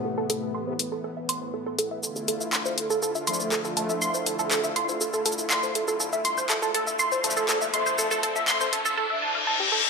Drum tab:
HH |----x-------x-------x-------x---|----x-------x-------x-------x---|----x-------x-------x-------x---|----x-------x-------x-------x---|
SH |--------------------------------|x-x-x-x-x-x---x-x-x-xxx-x-x-x-x-|x-x-x-x-x-x---x-x-x-xxx-x-x-x-x-|x-x-x-x-x-x---x-x-x-xxx-x-x-x-x-|
CP |--------------------------------|--------x---------------x-------|--------x---------------x-------|--------x---------------x-------|

HH |----x-------x-------------------|
SH |x-x-x-x-x-x---x-----------------|
CP |--------x-----------------------|